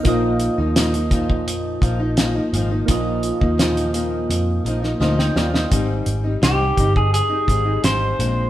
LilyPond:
<<
  \new Staff \with { instrumentName = "Synth keys" } { \time 4/4 \key bes \dorian \tempo 4 = 85 <bes ees' f' ees''>1 | <bes ees' f' ees''>2~ <bes ees' f' ees''>8 r8 <c'' ees''>16 <ees'' g''>16 <d'' f''>16 <c'' ees''>16~ | <c'' ees''>16 r2. r8. | }
  \new Staff \with { instrumentName = "Clean electric guitar" } { \time 4/4 \key bes \dorian r1 | r1 | r4 g'8. aes'16 aes'4 c''4 | }
  \new Staff \with { instrumentName = "Nylon-string guitar" } { \time 4/4 \key bes \dorian <bes, f bes ees'>8. <f bes ees'>16 <bes, f bes ees'>16 <f bes ees'>16 <bes, f bes ees'>4 <bes, f bes ees'>16 <f bes ees'>16 <bes, f bes ees'>16 <f bes ees'>16 <bes, f bes ees'>16 <f bes ees'>16 | <bes, f bes ees'>8. <f bes ees'>16 <bes, f bes ees'>8 <bes, f bes ees'>4 <bes, f bes ees'>16 <f bes ees'>16 <bes, f bes ees'>16 <f bes ees'>16 <bes, f bes ees'>16 <f bes ees'>16 | <aes, g c' ees'>8. <g c' ees'>16 <aes, g c' ees'>8 <g c' ees'>8. <g c' ees'>16 <aes, g c' ees'>16 <g c' ees'>16 <aes, g c' ees'>8 <bes, aes c' d'>8 | }
  \new Staff \with { instrumentName = "Picked electric bass" } { \clef bass \time 4/4 \key bes \dorian bes,,8. ees,4~ ees,16 f,8 bes,,4 aes,,8 | bes,,8. ees,4~ ees,16 f,8 bes,,8 d,8 ees,8 | aes,,8 aes,,8 c,8 g,,8. r16 aes,,8 aes,,8 bes,,8 | }
  \new DrumStaff \with { instrumentName = "Drums" } \drummode { \time 4/4 <hh bd>8 hh8 <hh sn>16 hh16 <hh bd>16 bd16 hh8 <hh bd>8 <hh sn>8 hh8 | <hh bd>8 hh16 bd16 <hh sn>16 hh16 hh8 hh8 hh16 sn16 sn16 sn16 sn16 sn16 | <hh bd>8 hh8 <hh sn>8 <hh bd>16 bd16 hh8 <hh bd>8 <hh sn>8 hh8 | }
>>